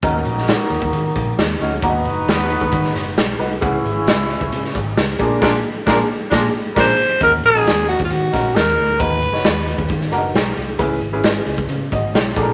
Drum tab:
CC |----------------|----------------|----------------|x-----------x---|
HH |x-x-x-x-x-x-x-o-|x-x-x-x-x-x-x-o-|x-x-x-x-x-x-x-x-|----------------|
SD |---oo-------o---|----o----oo-o---|----o----o--o---|o---o---o---o---|
BD |o------o--o-----|o------oo-------|o------o--o---o-|o---o---o---o---|

CC |----------------|----------------|----------------|
HH |x-x-x-x-x-x-x-o-|x-x-x-x-x-x-x-x-|x-x-x-x-x-x-x-x-|
SD |---oo-----o-o---|---oo----o--o---|----o-------o---|
BD |o------o--o-----|o------oo-------|o------o--o---o-|